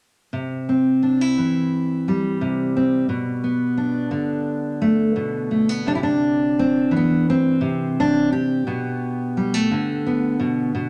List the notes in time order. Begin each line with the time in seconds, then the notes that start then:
0.33 C3
0.69 C4
1.02 D4
1.21 E4
1.38 E3
2.08 G3
2.41 C3
2.76 C4
3.09 B2
3.44 B3
3.77 D4
4.11 D3
4.82 A3
5.16 B2
5.51 A3
5.69 B3
5.86 C3 D4
5.95 E4
6.03 D4
6.59 C4
6.91 E3
6.96 B3
7.30 C4
7.61 C3
8.00 D4
8.32 G4
8.67 B2 B3
9.37 G3
9.54 A3
9.71 D3
10.06 B3
10.40 B2
10.75 B2